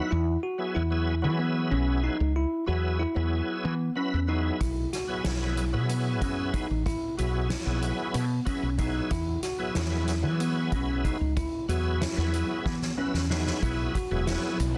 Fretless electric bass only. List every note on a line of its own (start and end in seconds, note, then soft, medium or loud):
0.12 0.36 E2 medium
0.76 1.26 E2 medium
1.24 1.73 E3 medium
1.71 2.08 B1 medium
2.20 2.44 C#2 medium
2.68 3.04 E2 medium
3.16 3.40 E2 medium
3.65 3.89 E3 medium
4.14 4.50 E2 medium
4.61 4.85 B1 medium
5.25 5.75 B1 medium
5.74 6.21 B2 medium
6.21 6.58 F#2 medium
6.71 6.94 A1 medium
7.19 7.55 B1 medium
7.67 7.91 B1 medium
8.15 8.39 B2 medium
8.63 8.99 B1 medium
9.11 9.35 E2 medium
9.76 10.25 E2 medium
10.23 10.74 E3 medium
10.72 11.09 B1 medium
11.21 11.45 C#2 medium
11.69 12.05 E2 medium
12.18 12.42 E2 medium
12.66 12.90 E3 medium
13.14 13.51 E2 medium
13.63 13.87 B1 medium
14.11 14.35 E1 medium
14.60 14.78 B1 medium